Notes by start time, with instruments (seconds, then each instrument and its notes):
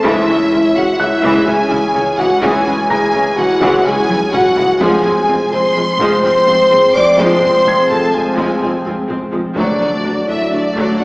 Already playing: felt piano A5 C6
0.03 sub bass C#2, double bass section C#2, cello section C#3, viola section E3 G#3, analog synth pad E3 G#3 E4 C#5, trombone section E3 C#4, french horn section E4, violin section E5, taiko
0.28 double bass section C#2, cello section C#3, viola section G#3 C#4, taiko low
0.52 double bass section C#2, cello section C#3, viola section C#4 E4, taiko low
0.75 double bass section C#2, cello section C#3, viola section G#3 C#4, french horn section F#4, violin section F#5, taiko low
0.99 double bass section C#2, cello section C#3, viola section E3 G#3, french horn section E4, violin section E5, felt piano F#6
1.23 double bass section C#2, cello section C#3, viola section E3 G#3, taiko
1.46 double bass section C#2, cello section C#3, viola section G#3 C#4, french horn section G#4, violin section G#5, taiko low
1.70 double bass section C#2, cello section C#3, viola section C#4 E4, taiko low
1.94 double bass section C#2, cello section C#3, viola section G#3 C#4, taiko low
2.18 double bass section C#2, cello section C#3, viola section E3 G#3, french horn section F#4, violin section F#5, taiko low
2.42 double bass section C#2, cello section C#3, viola section E3 G#3, french horn section G#4, violin section G#5, taiko
2.66 double bass section C#2, cello section C#3, viola section G#3 C#4, taiko low
2.90 double bass section C#2, cello section C#3, viola section C#4 E4, french horn section G#4, violin section G#5, felt piano A#5 A#6, taiko low
3.13 double bass section C#2, cello section C#3, viola section G#3 C#4, taiko low
3.37 double bass section C#2, cello section C#3, viola section E3 G#3, french horn section F#4, violin section F#5
3.61 double bass section C#2, cello section C#3, viola section E3 G#3, taiko
3.85 double bass section C#2, cello section C#3, viola section G#3 C#4, french horn section G#4, violin section G#5, taiko low
4.09 double bass section C#2, cello section C#3, viola section C#4 E4, taiko high
4.33 double bass section C#2, cello section C#3, viola section G#3 C#4, french horn section F#4, violin section F#5, taiko mid
4.56 double bass section C#2, cello section C#3, viola section E3 G#3, taiko low
4.80 sub bass F1, double bass section F1, cello section F2, viola section F3 G#3, trombone section F3 C4, analog synth pad F3 G#3 G#4 C5, french horn section G#4, violin section G#5, taiko
5.05 double bass section F1, cello section F2, viola section G#3 C4, taiko low
5.28 double bass section F1, cello section F2, viola section C4 F4, taiko low
5.52 double bass section F1, cello section F2, viola section G#3 C4, french horn section C5, violin section C6, taiko low
5.76 double bass section F1, cello section F2, viola section F3 G#3
5.99 double bass section F1, cello section F2, viola section F3 G#3, taiko
6.23 double bass section F1, cello section F2, viola section G#3 C4, french horn section C5, violin section C6, taiko low
6.47 double bass section F1, cello section F2, viola section C4 F4, taiko low
6.71 double bass section F1, cello section F2, viola section G#3 C4, taiko low
6.94 double bass section F1, cello section F2, viola section F3 G#3, french horn section D5, violin section D6, taiko low
7.18 double bass section F1, cello section F2, viola section F3 G#3, french horn section C5, violin section C6, taiko
7.43 double bass section F1, cello section F2, viola section G#3 C4, taiko low
7.66 double bass section F1, cello section F2, viola section C4 F4, felt piano G#6, taiko low
7.90 double bass section F1, cello section F2, viola section G#3 C4, french horn section A4, violin section A5, taiko low
8.14 double bass section F1, cello section F2, viola section F3 G#3, french horn section G#4, violin section G#5
8.36 double bass section F1, cello section F2, viola section F3 G#3, taiko
8.61 double bass section F1, cello section F2, viola section G#3 C4, taiko low
8.85 double bass section F1, cello section F2, viola section C4 F4, taiko low
9.09 double bass section F1, cello section F2, viola section G#3 C4, taiko low
9.32 double bass section F1, cello section F2, viola section F3 G#3, taiko low
9.55 sub bass D1, cello section D2, double bass section D2, viola section F#3 A3, analog synth pad F#3 A3 F#4 D5, trombone section F#3 D4, french horn section D4, violin section D5, taiko
9.80 double bass section D2, cello section D2, viola section A3 D4, taiko low
10.04 cello section D2, double bass section D2, viola section D4 F#4, taiko low
10.26 double bass section D2, cello section D2, viola section A3 D4, french horn section E4, violin section E5, taiko low
10.50 cello section D2, double bass section D2, viola section F#3 A3, french horn section D4, violin section D5
10.76 cello section D2, double bass section D2, viola section F#3 A3, taiko
10.99 cello section D2, double bass section D2, viola section A3 D4, french horn section F#4, violin section F#5, taiko low